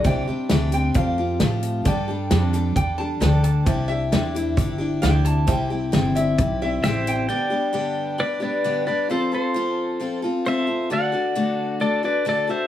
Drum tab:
HH |x-xxx-xx|x-xxx-xx|x-xxx-xx|x-xxx-xx|
SD |--o---o-|--o---o-|--o---o-|--o---o-|
BD |o---o---|o---o---|o---o---|o---o---|

HH |--------|--------|--------|
SD |--------|--------|--------|
BD |--------|--------|--------|